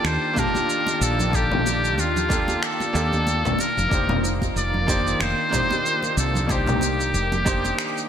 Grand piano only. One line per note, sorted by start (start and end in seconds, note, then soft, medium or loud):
0.00 0.33 A#3 medium
0.00 0.35 D4 medium
0.00 0.36 F4 medium
0.00 0.38 G4 medium
0.00 1.36 A4 loud
0.33 1.28 A#3 medium
0.33 1.29 D4 medium
0.33 1.30 F4 medium
0.38 1.31 G4 medium
0.38 1.31 A5 loud
1.30 2.25 A#3 medium
1.30 2.26 D4 medium
1.30 2.27 F4 medium
1.35 2.27 G4 medium
1.35 2.28 A4 medium
2.29 2.90 A#3 medium
2.29 2.91 D4 medium
2.29 2.91 F4 medium
2.29 2.92 G4 medium
2.29 2.92 A4 medium
2.93 3.57 A#3 medium
2.93 3.57 D4 medium
2.93 3.57 F4 medium
2.93 3.58 G4 medium
2.93 3.58 A4 loud
3.89 4.83 A#3 medium
3.89 4.84 D4 medium
3.89 4.85 D#4 medium
3.93 4.86 G4 medium
3.93 4.86 C5 medium
4.87 5.48 A#3 medium
4.87 5.49 D4 medium
4.87 5.49 D#4 medium
4.87 5.50 G4 medium
4.87 5.50 C5 loud
5.49 6.44 A#3 medium
5.49 6.45 D4 medium
5.49 6.46 D#4 medium
5.54 6.47 G4 medium
5.54 6.47 C5 loud
6.46 7.41 A#3 medium
6.46 7.42 D4 medium
6.46 7.43 D#4 medium
6.51 7.43 G4 medium
6.51 7.44 C5 medium
7.44 8.06 A#3 medium
7.44 8.07 D4 medium
7.44 8.07 D#4 medium
7.44 8.07 G4 medium
7.44 8.08 C5 loud